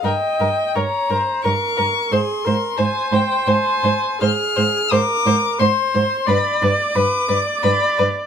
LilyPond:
<<
  \new Staff \with { instrumentName = "Violin" } { \time 3/4 \key f \minor \tempo 4 = 88 g''4 bes''4 des'''4 | c'''4 aes''8 g''8 aes''4 | \key f \dorian f'''4 d'''4 c'''4 | b''8 d'''4. b''8 r8 | }
  \new Staff \with { instrumentName = "Viola" } { \time 3/4 \key f \minor ees''4 des''8 c''8 bes'4 | aes'8 bes'8 c''2 | \key f \dorian aes'4 bes'4 c''4 | d''4 b'8 d''4. | }
  \new Staff \with { instrumentName = "Violin" } { \time 3/4 \key f \minor bes'8 bes'8 bes'8 bes'8 bes'8 bes'8 | c''8 c''8 c''8 c''8 c''8 c''8 | \key f \dorian c''8 c''8 c''8 c''8 c''8 c''8 | b'8 b'8 b'8 b'8 b'8 b'8 | }
  \new Staff \with { instrumentName = "Cello" } { \clef bass \time 3/4 \key f \minor g,8 g,8 g,8 g,8 g,8 g,8 | aes,8 aes,8 aes,8 aes,8 aes,8 aes,8 | \key f \dorian aes,8 aes,8 aes,8 aes,8 aes,8 aes,8 | g,8 g,8 g,8 g,8 g,8 g,8 | }
>>